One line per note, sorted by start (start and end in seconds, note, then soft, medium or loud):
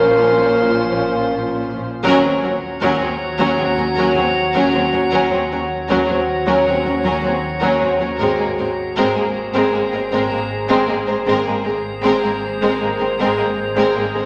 0.00 1.80 A#1 medium
0.00 2.00 A#1 loud
0.00 1.80 A#2 medium
0.00 1.68 F3 medium
0.00 1.80 F3 medium
0.00 1.68 C#4 medium
0.00 1.80 C#4 medium
0.00 2.01 C#4 medium
0.00 2.01 F4 medium
0.00 1.63 A#4 medium
0.00 1.80 C5 medium
0.00 1.66 F5 medium
0.00 2.00 C6 medium
2.03 2.22 D#2 medium
2.03 5.08 D#2 medium
2.03 2.22 D#2 medium
2.03 2.22 F#3 medium
2.03 2.41 F#3 medium
2.03 2.40 C#4 medium
2.03 2.22 C#4 medium
2.03 5.08 F#4 medium
2.03 2.22 A#4 medium
2.03 5.08 C#5 medium
2.03 5.08 A#5 medium
2.23 2.31 D#2 medium
2.23 2.32 F#3 soft
2.23 2.32 C4 soft
2.23 2.31 G#4 soft
2.41 2.50 D#2 soft
2.41 2.51 D#2 medium
2.41 2.50 F#3 soft
2.41 2.51 C#4 soft
2.41 2.49 A#4 soft
2.81 2.89 D#2 medium
2.81 2.99 F#3 medium
2.81 3.00 C#4 medium
2.81 2.99 A#4 medium
3.00 3.09 D#2 medium
3.00 3.08 F#3 soft
3.00 3.09 C4 soft
3.00 3.07 G#4 medium
3.38 3.47 D#2 medium
3.38 3.57 F#3 medium
3.38 3.57 C#4 medium
3.38 3.56 A#4 medium
3.56 3.66 D#2 soft
3.56 3.67 D#2 soft
3.56 3.86 F#3 medium
3.56 3.67 F#3 soft
3.56 3.67 C4 soft
3.56 3.86 C#4 medium
3.56 3.64 G#4 soft
3.76 3.86 D#2 soft
3.76 3.87 F#3 soft
3.76 3.87 C#4 soft
3.76 3.84 A#4 soft
3.95 4.04 D#2 medium
3.95 4.15 F#3 medium
3.95 4.13 A#4 medium
3.99 4.16 C#4 medium
4.14 4.24 D#2 soft
4.14 4.24 F#3 soft
4.14 4.25 C4 soft
4.14 4.22 G#4 medium
4.53 4.63 D#2 medium
4.53 4.72 F#3 medium
4.53 4.73 C#4 medium
4.53 4.71 A#4 medium
4.72 4.81 D#2 soft
4.72 4.82 D#2 soft
4.72 4.82 F#3 soft
4.72 4.81 C4 medium
4.72 4.80 G#4 soft
4.92 5.01 D#2 medium
4.92 5.01 F#3 medium
4.92 5.01 C#4 soft
4.92 5.00 A#4 soft
5.12 5.20 D#2 medium
5.12 8.16 D#2 medium
5.12 5.20 D#2 medium
5.12 5.30 F#3 medium
5.12 5.40 F#3 medium
5.12 5.40 C#4 medium
5.12 5.31 C#4 medium
5.12 8.15 F#4 medium
5.12 5.30 A#4 medium
5.12 8.16 C#5 medium
5.12 8.16 A#5 medium
5.31 5.40 D#2 medium
5.31 5.39 F#3 soft
5.31 5.39 C4 soft
5.31 5.39 G#4 soft
5.50 5.58 D#2 soft
5.50 5.59 D#2 soft
5.50 5.59 F#3 soft
5.50 5.60 C#4 soft
5.50 5.59 A#4 soft
5.88 5.96 D#2 medium
5.88 5.98 D#2 medium
5.88 6.06 F#3 medium
5.88 6.07 C#4 medium
5.88 6.07 A#4 medium
6.07 6.18 D#2 soft
6.07 6.15 F#3 soft
6.07 6.18 C4 soft
6.07 6.15 G#4 medium
6.46 6.56 D#2 medium
6.46 6.64 F#3 medium
6.46 6.65 C#4 medium
6.46 6.65 A#4 medium
6.65 6.73 D#2 soft
6.65 6.74 D#2 soft
6.65 6.93 F#3 medium
6.65 6.74 F#3 soft
6.65 6.76 C4 soft
6.65 6.94 C#4 medium
6.65 6.73 G#4 soft
6.85 6.93 D#2 soft
6.85 6.93 F#3 soft
6.85 6.94 C#4 medium
6.85 6.93 A#4 soft
7.04 7.12 D#2 medium
7.04 7.13 D#2 medium
7.04 7.21 F#3 medium
7.04 7.23 C#4 medium
7.04 7.22 A#4 medium
7.22 7.33 D#2 soft
7.22 7.30 F#3 soft
7.22 7.33 C4 soft
7.22 7.31 G#4 medium
7.61 7.71 D#2 medium
7.61 7.79 F#3 medium
7.61 7.81 C#4 medium
7.61 7.79 A#4 medium
7.79 7.89 D#2 soft
7.79 7.90 D#2 soft
7.79 7.89 F#3 soft
7.79 7.90 C4 medium
7.79 7.87 G#4 soft
7.99 8.08 D#2 soft
7.99 8.08 F#3 medium
7.99 8.09 C#4 medium
7.99 8.07 A#4 soft
8.18 8.27 G#1 medium
8.18 11.27 G#1 medium
8.18 8.27 G#2 medium
8.18 8.37 G#3 medium
8.18 8.48 A#3 medium
8.18 8.48 C4 medium
8.18 8.38 C4 medium
8.18 11.28 G#4 medium
8.18 8.36 A#4 medium
8.18 11.28 C5 medium
8.18 11.23 A#5 medium
8.38 8.47 G#2 soft
8.38 8.47 G#3 soft
8.38 8.47 A#3 soft
8.38 8.46 G#4 soft
8.58 8.66 G#1 soft
8.58 8.66 G#2 soft
8.58 8.66 G#3 soft
8.58 8.67 C4 soft
8.58 8.66 A#4 soft
8.96 9.04 G#1 medium
8.96 9.04 G#2 medium
8.96 9.14 G#3 medium
8.96 9.15 C4 medium
8.96 9.14 A#4 medium
9.15 9.23 G#2 soft
9.15 9.23 G#3 soft
9.15 9.24 A#3 soft
9.15 9.23 G#4 medium
9.54 9.62 G#2 medium
9.54 9.72 G#3 medium
9.54 9.72 C4 medium
9.54 9.72 A#4 medium
9.72 9.81 G#1 soft
9.72 9.81 G#2 medium
9.72 9.82 G#3 soft
9.72 9.80 A#3 soft
9.72 10.02 A#3 medium
9.72 10.02 C4 medium
9.72 9.82 G#4 soft
9.92 10.00 G#2 soft
9.92 10.01 G#3 soft
9.92 10.00 C4 soft
9.92 10.01 A#4 medium
10.11 10.20 G#1 medium
10.11 10.20 G#2 medium
10.11 10.30 G#3 medium
10.11 10.29 C4 medium
10.11 10.30 A#4 medium
10.31 10.39 G#2 soft
10.31 10.39 G#3 medium
10.31 10.40 A#3 soft
10.31 10.39 G#4 soft
10.69 10.77 G#2 medium
10.69 10.87 G#3 medium
10.69 10.87 C4 medium
10.69 10.87 A#4 medium
10.88 10.97 G#1 soft
10.88 10.97 G#2 medium
10.88 10.97 G#3 soft
10.88 10.96 A#3 medium
10.88 10.96 G#4 medium
11.06 11.16 G#2 medium
11.06 11.16 G#3 medium
11.06 11.14 C4 soft
11.06 11.16 A#4 medium
11.26 11.35 G#1 medium
11.26 14.26 G#1 medium
11.26 11.35 G#2 medium
11.26 11.45 G#3 medium
11.26 11.56 A#3 medium
11.26 11.45 C4 medium
11.26 11.56 C4 medium
11.26 14.26 G#4 medium
11.26 11.46 A#4 medium
11.26 14.26 C5 medium
11.26 14.26 A#5 medium
11.46 11.54 G#2 medium
11.46 11.55 G#3 soft
11.46 11.54 A#3 soft
11.46 11.54 G#4 soft
11.64 11.74 G#1 soft
11.64 11.73 G#2 soft
11.64 11.74 G#3 soft
11.64 11.72 C4 soft
11.64 11.75 A#4 soft
12.02 12.11 G#1 medium
12.02 12.13 G#2 medium
12.02 12.22 G#3 medium
12.02 12.21 C4 medium
12.02 12.22 A#4 medium
12.23 12.31 G#2 soft
12.23 12.31 G#3 soft
12.23 12.31 A#3 soft
12.23 12.31 G#4 soft
12.62 12.69 G#2 medium
12.62 12.79 G#3 medium
12.62 12.80 C4 medium
12.62 12.80 A#4 medium
12.80 12.88 G#1 soft
12.80 12.89 G#2 medium
12.80 12.88 G#3 soft
12.80 12.88 A#3 soft
12.80 12.89 G#4 medium
12.84 13.10 A#3 medium
12.84 13.10 C4 medium
13.00 13.07 G#2 soft
13.00 13.09 G#3 soft
13.00 13.08 C4 medium
13.00 13.08 A#4 soft
13.19 13.27 G#1 medium
13.19 13.27 G#2 medium
13.19 13.37 G#3 medium
13.19 13.37 C4 medium
13.19 13.38 A#4 medium
13.38 13.46 G#2 soft
13.38 13.46 G#3 soft
13.38 13.46 A#3 medium
13.38 13.46 G#4 soft
13.76 13.85 G#2 medium
13.76 13.95 G#3 medium
13.76 13.95 C4 medium
13.76 13.96 A#4 medium
13.96 14.04 G#1 soft
13.96 14.04 G#2 medium
13.96 14.04 G#3 medium
13.96 14.04 A#3 medium
13.96 14.06 G#4 medium
14.15 14.23 G#2 soft
14.15 14.23 G#3 soft
14.15 14.23 C4 soft
14.15 14.25 A#4 medium